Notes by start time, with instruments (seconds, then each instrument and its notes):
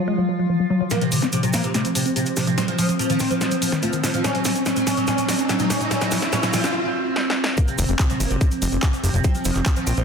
Already playing: ambient pad F3 F4
0.08 synth arpeggio sound G#3
0.18 synth arpeggio sound F#3
0.29 synth arpeggio sound F#3
0.39 synth arpeggio sound F#3
0.49 synth arpeggio sound F3
0.60 synth arpeggio sound F#3
0.70 synth arpeggio sound F#3
0.81 synth arpeggio sound F#3
0.90 synth arpeggio sound F3, oud A#3, ambient pad C4, snare, closed hi-hat, riser, shaker
1.01 oud C3, synth arpeggio sound F3, closed hi-hat
1.12 oud C3, synth arpeggio sound D#3, open hi-hat, shaker
1.22 synth arpeggio sound C4, snare, closed hi-hat, shaker
1.32 oud C3, synth arpeggio sound F3, closed hi-hat, shaker
1.43 oud C3, synth arpeggio sound F#3, closed hi-hat, shaker
1.53 synth arpeggio sound F3, oud A#3, snare, open hi-hat, shaker
1.64 oud C3, closed hi-hat, shaker
1.74 oud C3, synth arpeggio sound A3, snare, closed hi-hat, shaker
1.85 synth arpeggio sound F3, closed hi-hat, shaker
1.95 oud C3, synth arpeggio sound F3, open hi-hat, shaker
2.06 synth arpeggio sound C4, closed hi-hat, shaker
2.16 oud C3, synth arpeggio sound F3, closed hi-hat, shaker
2.26 closed hi-hat, shaker
2.37 oud C3, synth arpeggio sound F3, snare, open hi-hat, shaker
2.47 oud C3, synth arpeggio sound F3, closed hi-hat, shaker
2.58 synth arpeggio sound F#3, oud C4, snare, closed hi-hat, shaker
2.68 synth arpeggio sound F3, oud F3, closed hi-hat
2.79 synth arpeggio sound F3, oud F3, open hi-hat, shaker
2.89 synth arpeggio sound F3, closed hi-hat, shaker
2.99 oud F3, closed hi-hat, shaker
3.10 synth arpeggio sound D#3, oud F3, closed hi-hat, shaker
3.20 synth arpeggio sound F3, oud C4, snare, open hi-hat, shaker
3.31 oud F3, synth arpeggio sound F3, closed hi-hat, shaker
3.41 oud F3, synth arpeggio sound F#3, snare, closed hi-hat, shaker
3.51 synth arpeggio sound F3, closed hi-hat, shaker
3.62 oud F3, open hi-hat, shaker
3.72 synth arpeggio sound D#3, snare, closed hi-hat, shaker
3.83 oud F3, synth arpeggio sound A3, closed hi-hat, shaker
3.93 synth arpeggio sound D#3, closed hi-hat, shaker
4.04 synth arpeggio sound F3, oud F3, snare, open hi-hat, shaker
4.14 synth arpeggio sound F3, oud F3, closed hi-hat, shaker
4.24 synth arpeggio sound F#3, oud C#4, snare, closed hi-hat, shaker
4.35 synth arpeggio sound F#3, oud F#3, closed hi-hat
4.45 synth arpeggio sound F3, oud F#3, snare, open hi-hat, shaker
4.55 synth arpeggio sound C#4, closed hi-hat, shaker
4.66 synth arpeggio sound F#3, oud F#3, snare, closed hi-hat, shaker
4.76 oud F#3, synth arpeggio sound G#3, closed hi-hat, shaker
4.87 synth arpeggio sound F#3, oud C#4, snare, open hi-hat, shaker
4.97 oud F#3, closed hi-hat, shaker
5.07 synth arpeggio sound F#3, oud C#4, snare, closed hi-hat, shaker
5.18 synth arpeggio sound F#3, oud F#3, closed hi-hat, shaker
5.28 synth arpeggio sound F3, oud F#3, snare, open hi-hat, shaker
5.39 synth arpeggio sound C#4, closed hi-hat, shaker
5.49 synth arpeggio sound F#3, oud F#3, snare, closed hi-hat, shaker
5.59 oud F#3, synth arpeggio sound G#3, closed hi-hat, shaker
5.70 synth arpeggio sound F#3, oud C#4, snare, open hi-hat, shaker
5.81 oud F#3, closed hi-hat, shaker
5.91 synth arpeggio sound F#3, oud C#4, snare, closed hi-hat, shaker
6.01 synth arpeggio sound F#3, oud F#3, snare, closed hi-hat, shaker
6.11 synth arpeggio sound F3, oud F#3, snare, open hi-hat, shaker
6.22 synth arpeggio sound C#4, snare, closed hi-hat, shaker
6.32 synth arpeggio sound F#3, oud C#4, snare, closed hi-hat, shaker
6.43 synth arpeggio sound F#3, oud F#3, snare, closed hi-hat, shaker
6.53 synth arpeggio sound F3, oud F#3, snare, open hi-hat, shaker
6.64 synth arpeggio sound C#4, snare, closed hi-hat, shaker
7.16 snare
7.30 snare
7.44 snare
7.57 synth arpeggio sound F3, oud A#3, ambient pad C4, kick, closed hi-hat, shaker
7.68 oud C3, synth arpeggio sound F3, closed hi-hat, shaker
7.78 analog synth bass F1, oud C3, synth arpeggio sound D#3, open hi-hat, shaker
7.88 analog synth bass F1, synth arpeggio sound C4, closed hi-hat, shaker
7.99 oud C3, synth arpeggio sound F3, kick, clap, closed hi-hat, shaker
8.10 oud C3, synth arpeggio sound F#3, closed hi-hat, shaker
8.20 analog synth bass F#1, synth arpeggio sound F3, oud A#3, open hi-hat, shaker
8.30 analog synth bass F#1, oud C3, closed hi-hat, shaker
8.41 oud C3, synth arpeggio sound A3, kick, closed hi-hat, shaker
8.51 synth arpeggio sound F3, closed hi-hat, shaker
8.62 analog synth bass F1, oud C3, synth arpeggio sound F3, open hi-hat, shaker
8.72 analog synth bass F1, synth arpeggio sound C4, closed hi-hat, shaker
8.83 oud C3, synth arpeggio sound F3, kick, clap, closed hi-hat, shaker
8.93 closed hi-hat, shaker
9.04 analog synth bass F1, oud C3, synth arpeggio sound F3, open hi-hat, shaker
9.14 analog synth bass F1, oud C3, synth arpeggio sound F3, closed hi-hat, shaker
9.24 synth arpeggio sound F#3, oud C4, kick, closed hi-hat, shaker
9.35 oud F3, synth arpeggio sound F3, closed hi-hat, shaker
9.45 analog synth bass F1, oud F3, synth arpeggio sound F3, open hi-hat, shaker
9.55 analog synth bass F1, synth arpeggio sound F3, clap, closed hi-hat, shaker
9.66 oud F3, kick, clap, closed hi-hat, shaker
9.76 synth arpeggio sound D#3, oud F3, closed hi-hat, shaker
9.87 analog synth bass A#1, synth arpeggio sound F3, oud C4, open hi-hat, shaker
9.97 analog synth bass A#1, oud F3, synth arpeggio sound F3, closed hi-hat, shaker